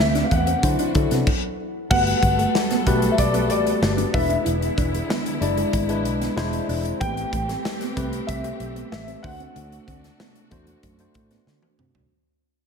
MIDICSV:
0, 0, Header, 1, 8, 480
1, 0, Start_track
1, 0, Key_signature, 1, "major"
1, 0, Tempo, 637620
1, 1437, Time_signature, 4, 2, 24, 8
1, 9534, End_track
2, 0, Start_track
2, 0, Title_t, "Grand piano"
2, 0, Program_c, 0, 0
2, 0, Note_on_c, 0, 76, 104
2, 155, Note_off_c, 0, 76, 0
2, 178, Note_on_c, 0, 77, 63
2, 234, Note_off_c, 0, 77, 0
2, 237, Note_on_c, 0, 78, 83
2, 1168, Note_off_c, 0, 78, 0
2, 1434, Note_on_c, 0, 78, 112
2, 2313, Note_off_c, 0, 78, 0
2, 2346, Note_on_c, 0, 76, 66
2, 2398, Note_off_c, 0, 76, 0
2, 2399, Note_on_c, 0, 74, 94
2, 2629, Note_off_c, 0, 74, 0
2, 2641, Note_on_c, 0, 74, 95
2, 3116, Note_on_c, 0, 76, 88
2, 3133, Note_off_c, 0, 74, 0
2, 4046, Note_off_c, 0, 76, 0
2, 5273, Note_on_c, 0, 79, 110
2, 6226, Note_on_c, 0, 76, 91
2, 6262, Note_off_c, 0, 79, 0
2, 6680, Note_off_c, 0, 76, 0
2, 6714, Note_on_c, 0, 76, 88
2, 6946, Note_on_c, 0, 78, 102
2, 6961, Note_off_c, 0, 76, 0
2, 8599, Note_off_c, 0, 78, 0
2, 9534, End_track
3, 0, Start_track
3, 0, Title_t, "Tine electric piano"
3, 0, Program_c, 1, 4
3, 0, Control_c, 1, 64, 127
3, 0, Note_on_c, 1, 57, 69
3, 0, Note_on_c, 1, 60, 63
3, 0, Note_on_c, 1, 67, 60
3, 0, Note_on_c, 1, 71, 74
3, 125, Note_off_c, 1, 57, 0
3, 127, Note_off_c, 1, 60, 0
3, 129, Note_off_c, 1, 67, 0
3, 131, Note_off_c, 1, 71, 0
3, 471, Note_on_c, 1, 54, 74
3, 476, Note_on_c, 1, 62, 67
3, 481, Note_on_c, 1, 64, 68
3, 482, Note_on_c, 1, 72, 81
3, 485, Control_c, 1, 64, 0
3, 633, Control_c, 1, 64, 127
3, 666, Note_off_c, 1, 54, 0
3, 668, Note_off_c, 1, 62, 0
3, 671, Note_off_c, 1, 64, 0
3, 671, Note_off_c, 1, 72, 0
3, 711, Note_on_c, 1, 54, 72
3, 715, Note_on_c, 1, 62, 63
3, 717, Note_on_c, 1, 64, 60
3, 718, Note_on_c, 1, 69, 78
3, 954, Note_off_c, 1, 54, 0
3, 956, Note_off_c, 1, 62, 0
3, 957, Note_off_c, 1, 64, 0
3, 958, Note_off_c, 1, 69, 0
3, 966, Control_c, 1, 64, 0
3, 1437, Note_on_c, 1, 57, 73
3, 1437, Note_on_c, 1, 66, 67
3, 1442, Note_on_c, 1, 67, 65
3, 1445, Note_on_c, 1, 71, 80
3, 1568, Control_c, 1, 64, 127
3, 1897, Note_off_c, 1, 57, 0
3, 1897, Note_off_c, 1, 66, 0
3, 1899, Note_off_c, 1, 67, 0
3, 1901, Note_off_c, 1, 71, 0
3, 2154, Note_on_c, 1, 57, 93
3, 2157, Note_on_c, 1, 66, 83
3, 2158, Note_on_c, 1, 67, 91
3, 2161, Note_on_c, 1, 71, 110
3, 2385, Note_off_c, 1, 57, 0
3, 2387, Note_off_c, 1, 66, 0
3, 2388, Note_off_c, 1, 67, 0
3, 2389, Note_off_c, 1, 71, 0
3, 2510, Note_on_c, 1, 57, 74
3, 2515, Note_on_c, 1, 66, 67
3, 2517, Note_on_c, 1, 67, 70
3, 2521, Note_on_c, 1, 71, 84
3, 3050, Note_off_c, 1, 57, 0
3, 3052, Note_off_c, 1, 66, 0
3, 3053, Note_off_c, 1, 67, 0
3, 3055, Note_off_c, 1, 71, 0
3, 3110, Note_on_c, 1, 56, 77
3, 3112, Note_on_c, 1, 62, 71
3, 3118, Note_on_c, 1, 64, 69
3, 3118, Note_on_c, 1, 71, 86
3, 3127, Control_c, 1, 64, 0
3, 3275, Control_c, 1, 64, 127
3, 3881, Note_off_c, 1, 56, 0
3, 3882, Note_off_c, 1, 62, 0
3, 3885, Note_off_c, 1, 64, 0
3, 3885, Note_off_c, 1, 71, 0
3, 4072, Note_on_c, 1, 56, 91
3, 4075, Note_on_c, 1, 62, 87
3, 4079, Note_on_c, 1, 64, 87
3, 4081, Note_on_c, 1, 74, 102
3, 4304, Note_off_c, 1, 56, 0
3, 4305, Note_off_c, 1, 62, 0
3, 4307, Note_off_c, 1, 64, 0
3, 4308, Note_off_c, 1, 74, 0
3, 4431, Note_on_c, 1, 56, 92
3, 4436, Note_on_c, 1, 62, 80
3, 4437, Note_on_c, 1, 64, 86
3, 4441, Note_on_c, 1, 71, 100
3, 4781, Note_off_c, 1, 56, 0
3, 4784, Note_off_c, 1, 62, 0
3, 4789, Note_off_c, 1, 64, 0
3, 4791, Note_on_c, 1, 56, 100
3, 4793, Note_on_c, 1, 62, 86
3, 4798, Note_off_c, 1, 71, 0
3, 4798, Note_on_c, 1, 64, 94
3, 4800, Note_on_c, 1, 72, 110
3, 4805, Control_c, 1, 64, 0
3, 4925, Control_c, 1, 64, 127
3, 5177, Note_off_c, 1, 56, 0
3, 5178, Note_off_c, 1, 62, 0
3, 5181, Note_off_c, 1, 64, 0
3, 5182, Note_off_c, 1, 72, 0
3, 5275, Note_on_c, 1, 57, 73
3, 5278, Note_on_c, 1, 59, 53
3, 5281, Note_on_c, 1, 67, 67
3, 5283, Note_on_c, 1, 71, 84
3, 5284, Control_c, 1, 64, 0
3, 5325, Note_off_c, 1, 59, 0
3, 5328, Note_on_c, 1, 60, 65
3, 5416, Control_c, 1, 64, 127
3, 5734, Note_off_c, 1, 57, 0
3, 5737, Note_off_c, 1, 67, 0
3, 5738, Note_off_c, 1, 71, 0
3, 5761, Note_off_c, 1, 60, 0
3, 5992, Note_on_c, 1, 57, 92
3, 5998, Note_on_c, 1, 60, 83
3, 5999, Note_on_c, 1, 67, 85
3, 6001, Note_on_c, 1, 71, 96
3, 6223, Note_off_c, 1, 57, 0
3, 6226, Note_off_c, 1, 60, 0
3, 6226, Note_off_c, 1, 67, 0
3, 6228, Note_off_c, 1, 71, 0
3, 6347, Note_on_c, 1, 57, 72
3, 6353, Note_on_c, 1, 60, 71
3, 6354, Note_on_c, 1, 67, 68
3, 6359, Note_on_c, 1, 72, 77
3, 6887, Note_off_c, 1, 57, 0
3, 6889, Note_off_c, 1, 60, 0
3, 6890, Note_off_c, 1, 67, 0
3, 6892, Note_off_c, 1, 72, 0
3, 6949, Note_on_c, 1, 57, 74
3, 6953, Note_on_c, 1, 62, 71
3, 6957, Note_on_c, 1, 66, 73
3, 6959, Note_on_c, 1, 72, 81
3, 6965, Control_c, 1, 64, 0
3, 7102, Control_c, 1, 64, 127
3, 7719, Note_off_c, 1, 57, 0
3, 7721, Note_off_c, 1, 62, 0
3, 7723, Note_off_c, 1, 66, 0
3, 7724, Note_off_c, 1, 72, 0
3, 7910, Note_on_c, 1, 57, 92
3, 7914, Note_on_c, 1, 62, 81
3, 7915, Note_on_c, 1, 66, 86
3, 7921, Note_on_c, 1, 72, 106
3, 8141, Note_off_c, 1, 57, 0
3, 8144, Note_off_c, 1, 62, 0
3, 8144, Note_off_c, 1, 66, 0
3, 8147, Note_off_c, 1, 72, 0
3, 8273, Note_on_c, 1, 57, 90
3, 8277, Note_on_c, 1, 62, 75
3, 8278, Note_on_c, 1, 66, 78
3, 8281, Note_on_c, 1, 72, 91
3, 8809, Note_off_c, 1, 57, 0
3, 8811, Note_off_c, 1, 62, 0
3, 8812, Note_off_c, 1, 66, 0
3, 8813, Note_off_c, 1, 72, 0
3, 9122, Control_c, 1, 64, 0
3, 9534, End_track
4, 0, Start_track
4, 0, Title_t, "Clean electric guitar"
4, 0, Program_c, 2, 27
4, 113, Note_on_c, 2, 62, 70
4, 191, Note_off_c, 2, 62, 0
4, 357, Note_on_c, 2, 60, 77
4, 434, Note_off_c, 2, 60, 0
4, 598, Note_on_c, 2, 62, 65
4, 675, Note_off_c, 2, 62, 0
4, 839, Note_on_c, 2, 59, 78
4, 916, Note_off_c, 2, 59, 0
4, 1439, Note_on_c, 2, 59, 80
4, 1516, Note_off_c, 2, 59, 0
4, 1797, Note_on_c, 2, 57, 75
4, 1874, Note_off_c, 2, 57, 0
4, 2040, Note_on_c, 2, 59, 84
4, 2116, Note_off_c, 2, 59, 0
4, 2159, Note_on_c, 2, 62, 70
4, 2235, Note_off_c, 2, 62, 0
4, 2514, Note_on_c, 2, 59, 72
4, 2592, Note_off_c, 2, 59, 0
4, 2751, Note_on_c, 2, 59, 70
4, 2830, Note_off_c, 2, 59, 0
4, 2990, Note_on_c, 2, 62, 83
4, 3070, Note_off_c, 2, 62, 0
4, 3233, Note_on_c, 2, 62, 84
4, 3311, Note_off_c, 2, 62, 0
4, 3349, Note_on_c, 2, 64, 90
4, 3429, Note_off_c, 2, 64, 0
4, 3594, Note_on_c, 2, 62, 82
4, 3672, Note_off_c, 2, 62, 0
4, 3833, Note_on_c, 2, 59, 80
4, 3911, Note_off_c, 2, 59, 0
4, 4195, Note_on_c, 2, 56, 72
4, 4272, Note_off_c, 2, 56, 0
4, 4312, Note_on_c, 2, 56, 93
4, 4390, Note_off_c, 2, 56, 0
4, 4675, Note_on_c, 2, 59, 79
4, 4752, Note_off_c, 2, 59, 0
4, 5036, Note_on_c, 2, 62, 80
4, 5113, Note_off_c, 2, 62, 0
4, 5280, Note_on_c, 2, 57, 82
4, 5355, Note_off_c, 2, 57, 0
4, 5636, Note_on_c, 2, 57, 72
4, 5713, Note_off_c, 2, 57, 0
4, 5877, Note_on_c, 2, 59, 84
4, 5953, Note_off_c, 2, 59, 0
4, 5998, Note_on_c, 2, 60, 73
4, 6074, Note_off_c, 2, 60, 0
4, 6352, Note_on_c, 2, 59, 71
4, 6430, Note_off_c, 2, 59, 0
4, 6594, Note_on_c, 2, 59, 68
4, 6671, Note_off_c, 2, 59, 0
4, 6834, Note_on_c, 2, 60, 80
4, 6911, Note_off_c, 2, 60, 0
4, 7076, Note_on_c, 2, 60, 85
4, 7153, Note_off_c, 2, 60, 0
4, 7191, Note_on_c, 2, 62, 94
4, 7269, Note_off_c, 2, 62, 0
4, 7431, Note_on_c, 2, 60, 85
4, 7509, Note_off_c, 2, 60, 0
4, 7675, Note_on_c, 2, 59, 83
4, 7752, Note_off_c, 2, 59, 0
4, 8036, Note_on_c, 2, 57, 72
4, 8113, Note_off_c, 2, 57, 0
4, 8154, Note_on_c, 2, 57, 84
4, 8231, Note_off_c, 2, 57, 0
4, 8514, Note_on_c, 2, 59, 77
4, 8591, Note_off_c, 2, 59, 0
4, 8873, Note_on_c, 2, 60, 77
4, 8950, Note_off_c, 2, 60, 0
4, 9534, End_track
5, 0, Start_track
5, 0, Title_t, "String section"
5, 0, Program_c, 3, 48
5, 0, Note_on_c, 3, 48, 73
5, 0, Note_on_c, 3, 57, 67
5, 0, Note_on_c, 3, 67, 77
5, 0, Note_on_c, 3, 71, 66
5, 446, Note_off_c, 3, 71, 0
5, 467, Note_off_c, 3, 57, 0
5, 467, Note_off_c, 3, 67, 0
5, 478, Note_on_c, 3, 52, 67
5, 478, Note_on_c, 3, 62, 64
5, 478, Note_on_c, 3, 66, 73
5, 943, Note_off_c, 3, 48, 0
5, 953, Note_off_c, 3, 52, 0
5, 953, Note_off_c, 3, 62, 0
5, 953, Note_off_c, 3, 66, 0
5, 1446, Note_on_c, 3, 55, 80
5, 1446, Note_on_c, 3, 59, 75
5, 1447, Note_on_c, 3, 69, 83
5, 1449, Note_on_c, 3, 57, 70
5, 3104, Note_off_c, 3, 55, 0
5, 3105, Note_off_c, 3, 69, 0
5, 3106, Note_off_c, 3, 57, 0
5, 3119, Note_on_c, 3, 50, 76
5, 3119, Note_on_c, 3, 56, 77
5, 3120, Note_on_c, 3, 64, 87
5, 4770, Note_off_c, 3, 59, 0
5, 4780, Note_off_c, 3, 50, 0
5, 4780, Note_off_c, 3, 56, 0
5, 4794, Note_on_c, 3, 56, 70
5, 4795, Note_on_c, 3, 50, 69
5, 4798, Note_on_c, 3, 60, 67
5, 5255, Note_off_c, 3, 64, 0
5, 5269, Note_off_c, 3, 56, 0
5, 5270, Note_off_c, 3, 50, 0
5, 5271, Note_off_c, 3, 60, 0
5, 5279, Note_on_c, 3, 55, 70
5, 5281, Note_on_c, 3, 57, 69
5, 5281, Note_on_c, 3, 67, 85
5, 5282, Note_on_c, 3, 60, 83
5, 6939, Note_off_c, 3, 55, 0
5, 6940, Note_off_c, 3, 67, 0
5, 6941, Note_off_c, 3, 60, 0
5, 6953, Note_on_c, 3, 48, 72
5, 6954, Note_on_c, 3, 62, 71
5, 6958, Note_on_c, 3, 66, 82
5, 9086, Note_off_c, 3, 57, 0
5, 9091, Note_off_c, 3, 48, 0
5, 9092, Note_off_c, 3, 62, 0
5, 9094, Note_off_c, 3, 66, 0
5, 9534, End_track
6, 0, Start_track
6, 0, Title_t, "Fingered electric bass"
6, 0, Program_c, 4, 33
6, 0, Note_on_c, 4, 38, 94
6, 164, Note_off_c, 4, 38, 0
6, 238, Note_on_c, 4, 40, 86
6, 403, Note_off_c, 4, 40, 0
6, 477, Note_on_c, 4, 50, 109
6, 560, Note_off_c, 4, 50, 0
6, 717, Note_on_c, 4, 50, 97
6, 800, Note_off_c, 4, 50, 0
6, 837, Note_on_c, 4, 48, 78
6, 920, Note_off_c, 4, 48, 0
6, 1437, Note_on_c, 4, 31, 97
6, 1603, Note_off_c, 4, 31, 0
6, 1676, Note_on_c, 4, 31, 96
6, 1842, Note_off_c, 4, 31, 0
6, 2158, Note_on_c, 4, 35, 82
6, 2323, Note_off_c, 4, 35, 0
6, 2397, Note_on_c, 4, 35, 89
6, 2636, Note_off_c, 4, 35, 0
6, 2636, Note_on_c, 4, 33, 99
6, 2802, Note_off_c, 4, 33, 0
6, 2875, Note_on_c, 4, 31, 89
6, 3041, Note_off_c, 4, 31, 0
6, 3116, Note_on_c, 4, 28, 97
6, 3282, Note_off_c, 4, 28, 0
6, 3356, Note_on_c, 4, 28, 103
6, 3522, Note_off_c, 4, 28, 0
6, 3596, Note_on_c, 4, 28, 87
6, 3762, Note_off_c, 4, 28, 0
6, 4071, Note_on_c, 4, 30, 90
6, 4238, Note_off_c, 4, 30, 0
6, 4316, Note_on_c, 4, 32, 99
6, 4552, Note_off_c, 4, 32, 0
6, 4552, Note_on_c, 4, 35, 94
6, 4719, Note_off_c, 4, 35, 0
6, 4792, Note_on_c, 4, 28, 102
6, 4959, Note_off_c, 4, 28, 0
6, 5033, Note_on_c, 4, 28, 97
6, 5199, Note_off_c, 4, 28, 0
6, 5278, Note_on_c, 4, 33, 109
6, 5443, Note_off_c, 4, 33, 0
6, 5515, Note_on_c, 4, 33, 100
6, 5681, Note_off_c, 4, 33, 0
6, 5999, Note_on_c, 4, 36, 89
6, 6163, Note_off_c, 4, 36, 0
6, 6237, Note_on_c, 4, 36, 101
6, 6402, Note_off_c, 4, 36, 0
6, 6471, Note_on_c, 4, 35, 93
6, 6638, Note_off_c, 4, 35, 0
6, 6715, Note_on_c, 4, 33, 90
6, 6880, Note_off_c, 4, 33, 0
6, 6957, Note_on_c, 4, 38, 100
6, 7121, Note_off_c, 4, 38, 0
6, 7196, Note_on_c, 4, 38, 112
6, 7361, Note_off_c, 4, 38, 0
6, 7436, Note_on_c, 4, 38, 100
6, 7601, Note_off_c, 4, 38, 0
6, 7917, Note_on_c, 4, 40, 84
6, 8081, Note_off_c, 4, 40, 0
6, 8155, Note_on_c, 4, 42, 93
6, 8320, Note_off_c, 4, 42, 0
6, 8395, Note_on_c, 4, 45, 92
6, 8560, Note_off_c, 4, 45, 0
6, 8633, Note_on_c, 4, 50, 86
6, 8716, Note_off_c, 4, 50, 0
6, 8873, Note_on_c, 4, 48, 81
6, 8956, Note_off_c, 4, 48, 0
6, 8999, Note_on_c, 4, 36, 87
6, 9080, Note_off_c, 4, 36, 0
6, 9534, End_track
7, 0, Start_track
7, 0, Title_t, "Muted clean electric guitar strokes"
7, 234, Note_on_c, 9, 29, 45
7, 309, Note_off_c, 9, 29, 0
7, 719, Note_on_c, 9, 29, 40
7, 795, Note_off_c, 9, 29, 0
7, 1680, Note_on_c, 9, 29, 44
7, 1755, Note_off_c, 9, 29, 0
7, 1917, Note_on_c, 9, 29, 44
7, 1993, Note_off_c, 9, 29, 0
7, 2634, Note_on_c, 9, 29, 43
7, 2710, Note_off_c, 9, 29, 0
7, 3112, Note_on_c, 9, 29, 49
7, 3187, Note_off_c, 9, 29, 0
7, 3474, Note_on_c, 9, 29, 46
7, 3549, Note_off_c, 9, 29, 0
7, 3954, Note_on_c, 9, 29, 46
7, 4030, Note_off_c, 9, 29, 0
7, 4436, Note_on_c, 9, 29, 45
7, 4512, Note_off_c, 9, 29, 0
7, 5517, Note_on_c, 9, 29, 45
7, 5593, Note_off_c, 9, 29, 0
7, 6479, Note_on_c, 9, 29, 44
7, 6554, Note_off_c, 9, 29, 0
7, 7314, Note_on_c, 9, 29, 45
7, 7390, Note_off_c, 9, 29, 0
7, 7797, Note_on_c, 9, 29, 47
7, 7872, Note_off_c, 9, 29, 0
7, 9534, End_track
8, 0, Start_track
8, 0, Title_t, "Drums"
8, 0, Note_on_c, 9, 38, 108
8, 73, Note_off_c, 9, 38, 0
8, 114, Note_on_c, 9, 42, 49
8, 116, Note_on_c, 9, 38, 37
8, 189, Note_off_c, 9, 42, 0
8, 191, Note_off_c, 9, 38, 0
8, 236, Note_on_c, 9, 36, 81
8, 236, Note_on_c, 9, 42, 75
8, 311, Note_off_c, 9, 36, 0
8, 311, Note_off_c, 9, 42, 0
8, 354, Note_on_c, 9, 42, 59
8, 429, Note_off_c, 9, 42, 0
8, 476, Note_on_c, 9, 36, 92
8, 478, Note_on_c, 9, 42, 103
8, 551, Note_off_c, 9, 36, 0
8, 553, Note_off_c, 9, 42, 0
8, 594, Note_on_c, 9, 42, 53
8, 670, Note_off_c, 9, 42, 0
8, 713, Note_on_c, 9, 42, 72
8, 717, Note_on_c, 9, 36, 101
8, 788, Note_off_c, 9, 42, 0
8, 792, Note_off_c, 9, 36, 0
8, 836, Note_on_c, 9, 42, 52
8, 840, Note_on_c, 9, 38, 34
8, 911, Note_off_c, 9, 42, 0
8, 915, Note_off_c, 9, 38, 0
8, 954, Note_on_c, 9, 49, 82
8, 956, Note_on_c, 9, 36, 97
8, 1029, Note_off_c, 9, 49, 0
8, 1031, Note_off_c, 9, 36, 0
8, 1436, Note_on_c, 9, 36, 126
8, 1436, Note_on_c, 9, 49, 99
8, 1511, Note_off_c, 9, 49, 0
8, 1512, Note_off_c, 9, 36, 0
8, 1557, Note_on_c, 9, 42, 49
8, 1633, Note_off_c, 9, 42, 0
8, 1676, Note_on_c, 9, 36, 84
8, 1679, Note_on_c, 9, 42, 61
8, 1751, Note_off_c, 9, 36, 0
8, 1754, Note_off_c, 9, 42, 0
8, 1800, Note_on_c, 9, 42, 50
8, 1875, Note_off_c, 9, 42, 0
8, 1921, Note_on_c, 9, 38, 106
8, 1996, Note_off_c, 9, 38, 0
8, 2036, Note_on_c, 9, 42, 55
8, 2038, Note_on_c, 9, 38, 39
8, 2112, Note_off_c, 9, 42, 0
8, 2114, Note_off_c, 9, 38, 0
8, 2157, Note_on_c, 9, 42, 81
8, 2158, Note_on_c, 9, 36, 89
8, 2232, Note_off_c, 9, 42, 0
8, 2233, Note_off_c, 9, 36, 0
8, 2274, Note_on_c, 9, 42, 65
8, 2350, Note_off_c, 9, 42, 0
8, 2396, Note_on_c, 9, 42, 112
8, 2397, Note_on_c, 9, 36, 93
8, 2471, Note_off_c, 9, 42, 0
8, 2472, Note_off_c, 9, 36, 0
8, 2515, Note_on_c, 9, 42, 57
8, 2590, Note_off_c, 9, 42, 0
8, 2634, Note_on_c, 9, 42, 77
8, 2709, Note_off_c, 9, 42, 0
8, 2760, Note_on_c, 9, 42, 60
8, 2835, Note_off_c, 9, 42, 0
8, 2880, Note_on_c, 9, 38, 114
8, 2956, Note_off_c, 9, 38, 0
8, 2997, Note_on_c, 9, 42, 67
8, 3072, Note_off_c, 9, 42, 0
8, 3117, Note_on_c, 9, 36, 109
8, 3118, Note_on_c, 9, 46, 74
8, 3192, Note_off_c, 9, 36, 0
8, 3193, Note_off_c, 9, 46, 0
8, 3238, Note_on_c, 9, 42, 56
8, 3314, Note_off_c, 9, 42, 0
8, 3357, Note_on_c, 9, 42, 80
8, 3432, Note_off_c, 9, 42, 0
8, 3481, Note_on_c, 9, 42, 50
8, 3556, Note_off_c, 9, 42, 0
8, 3596, Note_on_c, 9, 36, 91
8, 3602, Note_on_c, 9, 42, 65
8, 3672, Note_off_c, 9, 36, 0
8, 3677, Note_off_c, 9, 42, 0
8, 3723, Note_on_c, 9, 42, 50
8, 3798, Note_off_c, 9, 42, 0
8, 3842, Note_on_c, 9, 38, 115
8, 3917, Note_off_c, 9, 38, 0
8, 3960, Note_on_c, 9, 42, 51
8, 4035, Note_off_c, 9, 42, 0
8, 4079, Note_on_c, 9, 42, 80
8, 4154, Note_off_c, 9, 42, 0
8, 4197, Note_on_c, 9, 42, 65
8, 4272, Note_off_c, 9, 42, 0
8, 4316, Note_on_c, 9, 36, 97
8, 4316, Note_on_c, 9, 42, 103
8, 4391, Note_off_c, 9, 42, 0
8, 4392, Note_off_c, 9, 36, 0
8, 4434, Note_on_c, 9, 42, 60
8, 4509, Note_off_c, 9, 42, 0
8, 4558, Note_on_c, 9, 42, 77
8, 4633, Note_off_c, 9, 42, 0
8, 4679, Note_on_c, 9, 42, 58
8, 4683, Note_on_c, 9, 38, 37
8, 4755, Note_off_c, 9, 42, 0
8, 4759, Note_off_c, 9, 38, 0
8, 4800, Note_on_c, 9, 38, 113
8, 4875, Note_off_c, 9, 38, 0
8, 4916, Note_on_c, 9, 42, 60
8, 4992, Note_off_c, 9, 42, 0
8, 5039, Note_on_c, 9, 46, 74
8, 5114, Note_off_c, 9, 46, 0
8, 5160, Note_on_c, 9, 42, 56
8, 5235, Note_off_c, 9, 42, 0
8, 5277, Note_on_c, 9, 36, 116
8, 5278, Note_on_c, 9, 42, 89
8, 5353, Note_off_c, 9, 36, 0
8, 5353, Note_off_c, 9, 42, 0
8, 5400, Note_on_c, 9, 42, 47
8, 5475, Note_off_c, 9, 42, 0
8, 5517, Note_on_c, 9, 36, 88
8, 5520, Note_on_c, 9, 42, 64
8, 5592, Note_off_c, 9, 36, 0
8, 5595, Note_off_c, 9, 42, 0
8, 5640, Note_on_c, 9, 38, 36
8, 5641, Note_on_c, 9, 42, 48
8, 5715, Note_off_c, 9, 38, 0
8, 5716, Note_off_c, 9, 42, 0
8, 5761, Note_on_c, 9, 38, 115
8, 5836, Note_off_c, 9, 38, 0
8, 5878, Note_on_c, 9, 42, 53
8, 5880, Note_on_c, 9, 38, 39
8, 5953, Note_off_c, 9, 42, 0
8, 5955, Note_off_c, 9, 38, 0
8, 5999, Note_on_c, 9, 36, 85
8, 6000, Note_on_c, 9, 42, 80
8, 6074, Note_off_c, 9, 36, 0
8, 6075, Note_off_c, 9, 42, 0
8, 6119, Note_on_c, 9, 42, 63
8, 6194, Note_off_c, 9, 42, 0
8, 6238, Note_on_c, 9, 36, 93
8, 6238, Note_on_c, 9, 42, 107
8, 6313, Note_off_c, 9, 36, 0
8, 6313, Note_off_c, 9, 42, 0
8, 6356, Note_on_c, 9, 42, 57
8, 6431, Note_off_c, 9, 42, 0
8, 6475, Note_on_c, 9, 42, 72
8, 6550, Note_off_c, 9, 42, 0
8, 6596, Note_on_c, 9, 42, 54
8, 6672, Note_off_c, 9, 42, 0
8, 6718, Note_on_c, 9, 38, 118
8, 6793, Note_off_c, 9, 38, 0
8, 6835, Note_on_c, 9, 42, 58
8, 6910, Note_off_c, 9, 42, 0
8, 6955, Note_on_c, 9, 46, 74
8, 6957, Note_on_c, 9, 36, 107
8, 7031, Note_off_c, 9, 46, 0
8, 7032, Note_off_c, 9, 36, 0
8, 7079, Note_on_c, 9, 42, 53
8, 7154, Note_off_c, 9, 42, 0
8, 7196, Note_on_c, 9, 42, 84
8, 7272, Note_off_c, 9, 42, 0
8, 7320, Note_on_c, 9, 42, 51
8, 7395, Note_off_c, 9, 42, 0
8, 7436, Note_on_c, 9, 36, 80
8, 7441, Note_on_c, 9, 42, 67
8, 7511, Note_off_c, 9, 36, 0
8, 7516, Note_off_c, 9, 42, 0
8, 7559, Note_on_c, 9, 38, 34
8, 7560, Note_on_c, 9, 42, 50
8, 7634, Note_off_c, 9, 38, 0
8, 7635, Note_off_c, 9, 42, 0
8, 7678, Note_on_c, 9, 38, 111
8, 7753, Note_off_c, 9, 38, 0
8, 7796, Note_on_c, 9, 42, 55
8, 7871, Note_off_c, 9, 42, 0
8, 7914, Note_on_c, 9, 42, 78
8, 7917, Note_on_c, 9, 36, 86
8, 7989, Note_off_c, 9, 42, 0
8, 7992, Note_off_c, 9, 36, 0
8, 8031, Note_on_c, 9, 42, 67
8, 8107, Note_off_c, 9, 42, 0
8, 8154, Note_on_c, 9, 42, 109
8, 8155, Note_on_c, 9, 36, 92
8, 8229, Note_off_c, 9, 42, 0
8, 8231, Note_off_c, 9, 36, 0
8, 8271, Note_on_c, 9, 42, 55
8, 8347, Note_off_c, 9, 42, 0
8, 8389, Note_on_c, 9, 42, 77
8, 8395, Note_on_c, 9, 36, 105
8, 8464, Note_off_c, 9, 42, 0
8, 8471, Note_off_c, 9, 36, 0
8, 8512, Note_on_c, 9, 42, 51
8, 8516, Note_on_c, 9, 38, 41
8, 8587, Note_off_c, 9, 42, 0
8, 8591, Note_off_c, 9, 38, 0
8, 8637, Note_on_c, 9, 38, 60
8, 8712, Note_off_c, 9, 38, 0
8, 8751, Note_on_c, 9, 48, 63
8, 8827, Note_off_c, 9, 48, 0
8, 8875, Note_on_c, 9, 45, 89
8, 8950, Note_off_c, 9, 45, 0
8, 8995, Note_on_c, 9, 43, 88
8, 9070, Note_off_c, 9, 43, 0
8, 9534, End_track
0, 0, End_of_file